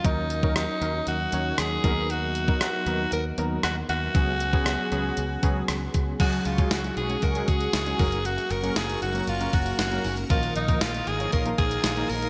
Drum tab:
CC |----------------|----------------|----------------|x---------------|
HH |x-x-x-x-x-x-x-x-|x-x-x-x-x-x-x-x-|x-x-x-x-x-x-x-x-|xxxxxxxxxxxxxxox|
SD |----r-------r---|----r-------r---|----r-------r---|----o-------o---|
BD |o--o----------o-|---o------------|o--o------o---o-|o--o----o-o---o-|

CC |----------------|----------------|
HH |xxxxxxxxxxxxxxox|xxxxxxxxxxxxxxox|
SD |----o-------o---|----o-------o---|
BD |----------o-----|o--o----o-o-----|